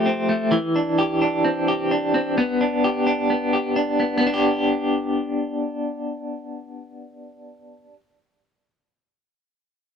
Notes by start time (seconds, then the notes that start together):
Already playing: F3 A3 G4
0.06 C4
0.29 A3
0.52 E3
0.76 D4
0.98 G4
1.21 D4
1.44 C4
1.68 G4
1.91 D4
2.14 C4
2.38 B3
2.61 D4
2.84 G4
3.07 D4
3.30 B3
3.53 G4
3.76 D4
4.00 B3
4.18 B3
4.27 D4
4.34 G4